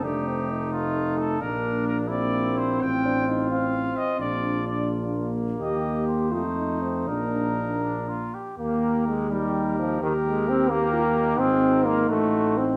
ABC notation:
X:1
M:6/8
L:1/16
Q:3/8=85
K:Bb
V:1 name="Trumpet"
G6 F4 A2 | B4 B2 d4 c2 | g4 z2 f4 e2 | d4 d2 z6 |
e4 c8 | B8- B2 z2 | [K:Eb] B6 B6 | B6 B6 |
A3 B3 c6 |]
V:2 name="Trumpet"
E12 | D6 =E6 | F12- | F8- F2 z2 |
G6 E6- | E6 D2 F2 G2 | [K:Eb] G6 G6 | G6 G6 |
F6 ^F6 |]
V:3 name="French horn"
D2 C2 E8 | D6 B,6 | C2 D2 E2 C6 | D8- D2 z2 |
G6 F2 E2 C2 | D8- D z3 | [K:Eb] z6 E6 | G6 G2 F2 E2- |
E12 |]
V:4 name="Trombone"
A,12 | B,6 C6- | C12- | C4 z2 B,6- |
B,6 A,6 | B,8- B,2 z2 | [K:Eb] B,4 A,2 G,4 F,2 | E,2 A,2 C2 B,6 |
C4 B,2 =A,4 C2 |]
V:5 name="Tuba" clef=bass
F,,,12 | B,,,12 | A,,,8- A,,,2 z2 | B,,,12 |
E,,6 F,,6 | B,,,8- B,,,2 z2 | [K:Eb] E,,12 | E,,12 |
A,,,6 =A,,,6 |]